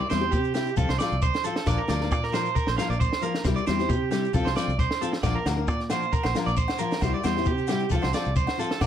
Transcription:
0.10 E2 G3 C4 E4 G4 C5, snare, shekere
0.21 C4 G4
0.31 C3 G4, kick, shekere
0.44 shekere
0.54 C4 E4 G4, muted steel-string acoustic guitar stroke, snare, shekere
0.66 shekere
0.77 C2 F3 C4 F4 A4, muted steel-string acoustic guitar stroke, kick, shekere
0.88 C2 C5, snare, shekere
0.99 F3 C4 F4 A4 D5, snare, shekere
1.11 C2, shekere
1.22 C5, kick, shekere
1.34 snare, shekere
1.43 F3 C4 F4 A4, shekere
1.56 A4, snare, shekere
1.66 A#1 F3 A#3 D4 A#4 D5, kick, snare, shekere
1.78 A#4
1.88 D2 F3 A#3 D4 A#4 D5, snare, shekere
2.01 A#3 D4 A#4, snare
2.12 A#2 D5, kick, shekere
2.23 A#4, snare
2.32 F3 A#3 D4 A#4 C5, snare, shekere
2.46 shekere
2.55 A#4, kick, shekere
2.67 A#1 C5, snare, shekere
2.78 F3 A#3 D4 A#4 F5, snare, shekere
2.90 A#1 D5, shekere
3.00 C5, kick, shekere
3.13 snare, shekere
3.21 F3 A#3 D4 A#4, shekere
3.35 snare, shekere
3.44 C2 G3 C4 E4 G4, muted clean electric guitar stroke, kick, snare, shekere
3.56 D5, shekere
3.67 E2 G3 C4 E4 G4 C5, snare, shekere
3.79 C4 E4 G4, snare, shekere
3.89 C3 G4, kick, shekere
4.11 G3 C4 E4 G4, snare, shekere
4.24 shekere
4.33 C2 F3 C4 F4 A4, kick, shekere
4.45 C2 C5, snare, shekere
4.56 F3 C4 F4 A4 D5, snare, shekere
4.68 C2, shekere
4.79 C5, kick, snare, shekere
4.91 snare
5.01 F3 C4 F4 A4, shekere
5.13 muted clean electric guitar stroke, snare, shekere
5.23 A#1 F3 A#3 D4 A#4 D5, kick, snare, low agogo, shekere
5.35 A#4
5.46 D2 F3 A#3 D4 A#4, muted clean electric guitar stroke, snare, low agogo, shekere
5.57 A#3 D4 A#4
5.68 A#2 D5, kick, shekere
5.80 snare, shekere
5.90 F3 A#3 D4 A#4 C5, snare, low agogo, shekere
6.02 shekere
6.12 A#4, kick, shekere
6.23 A#1 C5, snare, low agogo, shekere
6.35 F3 A#3 D4 A#4, snare, shekere
6.46 A#1 D5, shekere
6.57 C5, kick, shekere
6.68 snare, low agogo, shekere
6.78 F3 A#3 D4 A#4, shekere
6.91 snare, shekere
7.01 C2 G3 E4 G4 C5, muted steel-string acoustic guitar stroke, kick, snare, low agogo, shekere
7.14 D5
7.24 E2 G3 C4 E4 G4 C5, snare, low agogo, shekere
7.37 C4 E4 G4, snare
7.46 C3 G4, kick, shekere
7.58 shekere
7.67 G3 C4 G4, snare, low agogo, shekere
7.71 E4 G4
7.79 shekere
7.90 C2 F3 C4 A4, kick, shekere
7.94 F4 A4
8.02 C2 C5, snare, low agogo, shekere
8.13 F3 C4 F4 A4 D5, snare, shekere
8.24 C2, shekere
8.36 C5, kick, shekere
8.47 snare, low agogo, shekere
8.57 F3 C4 F4 A4, shekere
8.71 A4, snare, shekere
8.81 A#1 F3 A#3 D4 A#4 D5, kick, snare, low agogo, shekere

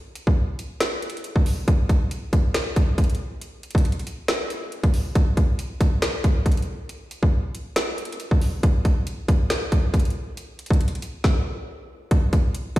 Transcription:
0.15 closed hi-hat
0.27 kick
0.59 closed hi-hat
0.80 finger snap, snare, closed hi-hat
1.02 closed hi-hat
1.10 closed hi-hat
1.17 closed hi-hat
1.24 closed hi-hat
1.36 kick
1.46 open hi-hat
1.68 kick, closed hi-hat
1.89 kick, closed hi-hat
2.11 closed hi-hat
2.33 kick, closed hi-hat
2.54 finger snap, snare, closed hi-hat
2.76 kick, closed hi-hat
2.98 kick, closed hi-hat
3.04 closed hi-hat
3.10 closed hi-hat
3.15 closed hi-hat
3.41 closed hi-hat
3.63 closed hi-hat
3.71 closed hi-hat
3.75 kick, closed hi-hat
3.85 closed hi-hat
3.92 closed hi-hat
3.99 closed hi-hat
4.07 closed hi-hat
4.28 finger snap, snare, closed hi-hat
4.50 closed hi-hat
4.72 closed hi-hat
4.83 kick, closed hi-hat
4.94 open hi-hat
5.15 kick, closed hi-hat
5.37 kick, closed hi-hat
5.59 closed hi-hat
5.81 kick, closed hi-hat
6.02 finger snap, snare, closed hi-hat
6.24 kick, closed hi-hat
6.46 kick, closed hi-hat
6.52 closed hi-hat
6.57 closed hi-hat
6.62 closed hi-hat
6.89 closed hi-hat
7.11 closed hi-hat
7.23 kick
7.55 closed hi-hat
7.76 finger snap, snare, closed hi-hat
7.98 closed hi-hat
8.05 closed hi-hat
8.12 closed hi-hat
8.20 closed hi-hat
8.31 kick
8.42 open hi-hat
8.63 kick, closed hi-hat
8.85 kick, closed hi-hat
9.07 closed hi-hat
9.28 kick, closed hi-hat
9.50 finger snap, snare, closed hi-hat
9.72 kick, closed hi-hat
9.94 kick, closed hi-hat
10.00 closed hi-hat
10.05 closed hi-hat
10.10 closed hi-hat
10.37 closed hi-hat
10.59 closed hi-hat
10.66 closed hi-hat
10.70 kick, closed hi-hat
10.81 closed hi-hat
10.88 closed hi-hat
10.95 closed hi-hat
11.02 closed hi-hat
11.24 kick, snare
12.11 kick, closed hi-hat
12.33 kick, closed hi-hat
12.55 closed hi-hat
12.76 kick, closed hi-hat

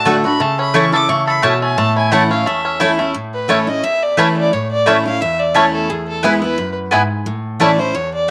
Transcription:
Already playing: A2 A3 D4 F#4
0.05 D3 A3 D4 F#4 A4 D5 F#5
0.24 D4 F#4 B5
0.40 C#3 A3 A5
0.59 C#4 B5
0.74 E3 A3 C#4 E4 C#5 A5 C#6
0.92 C#4 E4 A4 D6
1.09 C#3 A3 C#6
1.27 A4 B5
1.42 B2 A3 C#4 E4 C#5 A5
1.62 A3 G#5
1.78 A2 A3 A5
1.96 E4 G#5
2.12 E3 A3 C#4 E4 C#5 F#5 A5
2.30 C#4 E4 F5
2.46 E2 A3 E5
2.65 C#4
2.80 E3 A3 C#4 E4 C#5 A5
2.99 A3 C#4 E4
3.14 A2
3.34 B4
3.48 E3 A3 C#4 E4 C#5 A5
3.67 C#4 E4 D#5
3.84 E2 E5
4.02 D5
4.17 E3 A3 C#4 E4 B4 C#5 A5
4.37 D5
4.53 A2 C#5
4.71 D5
4.86 E3 A3 C#4 E4 C#5 E5 A5
5.05 C#4 E4 F5
5.21 E2 E5
5.39 D5
5.54 E3 A3 C#4 E4 C#5 A5
5.73 A4
5.89 E2 G#4
6.08 A4
6.23 E3 G#3 B3 E4 B4 G#5
6.42 B3 E4 B4
6.58 F#2
6.91 G#2 B3 E4 B4 G#5
7.26 A2
7.60 E3 A3 C#4 E4 C#5 D5 A5
7.79 C#4 E4 C5
7.95 E2 C#5
8.14 D5

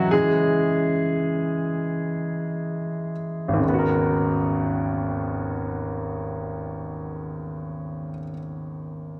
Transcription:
Already playing: C#3 D#3 E3 F#3 C#4 D#4 E4 F#4
0.11 C#3 E3 G#3 G#4
3.48 G#1
3.54 D#2
3.59 C#3
3.63 G#3
3.69 B3
3.74 F#4
3.79 A#4

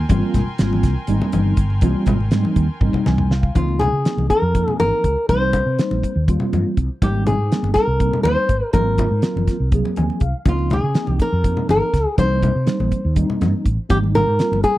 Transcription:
Already playing: A#4 G5 G#5 C6
0.09 G#1 G3 A#3 C4 F4, kick, closed hi-hat, high conga
0.34 G#1, kick, snare, closed hi-hat, low conga
0.47 muted fretless electric bass stroke, low conga
0.58 G#1 G3 A#3 C4 F4, snare, closed hi-hat
0.73 high conga, low conga
0.83 C2, kick, snare, closed hi-hat
0.97 muted fretless electric bass stroke
1.07 G#1 G3 A#3 C4 D#4, closed hi-hat, low conga
1.22 low conga
1.32 G1, closed hi-hat, high conga, low conga
1.57 G1, kick, closed hi-hat
1.70 low conga
1.81 C2 G3 A#3 C4 F4, kick, closed hi-hat, high conga
2.06 G#1, kick, closed hi-hat, low conga
2.20 low conga
2.31 G#2 G3 A#3 C4 D#4, snare, closed hi-hat
2.45 high conga
2.56 D#2, kick, closed hi-hat
2.81 G#1 G3 A#3 C4 D#4, kick, high tom
2.93 kick, low conga
3.06 C2 G#5, snare, high conga, low conga
3.18 mid tom
3.31 F5, snare
3.43 kick
3.54 C#2 F3 A#3 C4 D#4 F4, kick, closed hi-hat, high conga, low conga
3.68 low conga
3.79 G#4, closed hi-hat, low conga
3.93 C#3
4.05 F3 A#3 C4 D#4, snare, closed hi-hat
4.17 C2, high conga
4.30 A#4, kick, closed hi-hat
4.42 F2
4.55 F3 A#3 C4 D#4, kick, closed hi-hat
4.67 muted fretless electric bass stroke, low conga
4.79 G#1 A#4, closed hi-hat, high conga
5.04 C#2, kick, closed hi-hat, low conga
5.28 C2 G3 A#3 C4 D#4 C5, kick, closed hi-hat, high conga, low conga
5.42 low conga
5.53 kick, closed hi-hat, low conga
5.66 C3
5.79 G3 A#3 C4 D#4, snare, closed hi-hat
5.91 A#1, high conga
6.03 kick, closed hi-hat
6.15 D#2
6.28 G3 A#3 C4 F4, kick, closed hi-hat
6.40 muted fretless electric bass stroke, low conga
6.53 G2, closed hi-hat, high conga
6.77 C2, kick, closed hi-hat, low conga
7.01 G#1 G3 A#3 C4 D#4 G4, kick, closed hi-hat, high conga, low conga
7.15 low conga
7.27 G#4, closed hi-hat, low conga
7.38 G#2
7.50 G3 A#3 C4 D#4, snare, closed hi-hat
7.62 G1, high conga
7.74 A#4, kick, snare, closed hi-hat
7.87 C2
7.99 G3 A#3 C4 D#4, kick, closed hi-hat
8.12 muted fretless electric bass stroke, low conga
8.23 D#2 C5, closed hi-hat, high conga
8.49 G#1, kick, closed hi-hat, low conga
8.73 G#1 F#3 A#3 C4 F4 A#4, kick, closed hi-hat, high conga, low conga
8.98 kick, closed hi-hat, low conga
9.11 G#2
9.22 F#3 A#3 C4 F4, snare, closed hi-hat
9.36 F#1, high conga, low conga
9.47 kick, snare, closed hi-hat, low conga
9.60 C2
9.72 F#3 A#3 C4 G#4, kick, closed hi-hat, low conga
9.85 low conga
9.96 D#2 G#5, closed hi-hat, high conga, low conga
10.10 low conga
10.20 C2 F5, kick, closed hi-hat
10.45 C#2 F3 A#3 C4 D#4 F4, kick, closed hi-hat, high conga, low conga
10.59 low conga
10.70 G#4, snare, closed hi-hat, low conga
10.83 C#3
10.94 F3 A#3 C4 D#4, snare, closed hi-hat
11.07 C2 G4, high conga
11.19 A#4, kick, closed hi-hat
11.32 F2
11.44 F3 A#3 C4 D#4, kick, closed hi-hat
11.57 low conga
11.69 G#1 A#4, snare, closed hi-hat, high conga
11.93 C#2, kick, snare, closed hi-hat, low conga
12.17 C2 G3 A#3 C4 D#4 C5, kick, closed hi-hat, high conga, low conga
12.42 kick, closed hi-hat, low conga
12.55 C3
12.66 G3 A#3 C4 D#4, snare, closed hi-hat
12.79 A#1, high conga
12.92 kick, closed hi-hat
13.04 D#2
13.16 G3 A#3 C4 D#4, kick, closed hi-hat
13.30 low conga
13.41 G2, snare, closed hi-hat, high conga
13.66 A1, kick, closed hi-hat, low conga
13.89 G#1 G3 A#3 C4 D#4 G4, kick, closed hi-hat, high conga, low conga
14.04 low conga
14.15 A#4, closed hi-hat, low conga
14.26 G#2
14.39 G3 A#3 C4 F4, snare, closed hi-hat
14.51 G1, high conga
14.63 G#4, kick, closed hi-hat

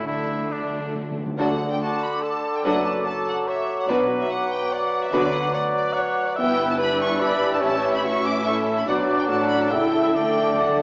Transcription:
0.07 D2 D3 A3 D4 E4 E5
0.16 D3
0.32 D3
0.40 D3
0.47 D3 A3
0.51 D4 D5
0.63 D3
0.70 D3
0.79 D3
0.87 D3
0.95 D3
1.03 D3
1.11 D3
1.18 D3
1.26 D3
1.38 D2 D3 F#3 A3 D4 F#4 A4 F#5 D6
1.71 G5
1.81 F#4 A5
2.02 B5
2.23 A4 A5
2.56 G5
2.64 F#1 F#2 F#3 A3 D4 F#4 A4 B4 F#5
2.85 A5
3.05 A4 A5
3.27 F#5
3.48 C#5 E5
3.79 F#5
3.88 B1 B2 F#3 B3 D4 F#4 B4 D5 D6
4.21 E5
4.30 F#5
4.51 G5
4.73 D5 F#5
5.04 E5
5.13 D2 D3 F#3 B3 D4 F#4 B4 D5
5.35 F#5
5.54 D5 F#5
5.77 D5
5.93 C#5 F#5
6.27 D5
6.36 G1 G2 E3 B3 E4 G4 B4 E5 G5 E6
6.71 A5
6.78 D4 G4 B4 B5
7.02 C#6
7.19 E4 G4 D5 B5
7.53 A5
7.60 A1 A2 E3 C#4 E4 C#5 E5 A5
7.94 B5
8.03 C#4 F#4 C#6
8.25 D6
8.45 E4 A4 E5 C#6
8.77 B5
8.86 B1 B2 F#3 D4 F#4 B4 D5 F#5 D6
9.19 G5
9.28 A1 A2 F#3 D4 F#4 A4 D5 F#5 A5
9.49 B5
9.60 A5
9.71 C#2 C#3 A3 E4 A4 E5 G5 E6
10.04 E5
10.15 D2 D3 A3 D4 A4 D5 G5 D6
10.22 D3
10.31 D3
10.46 D3
10.54 D3
10.59 D3 A3 D4 D5 F#5
10.69 D3
10.77 D3

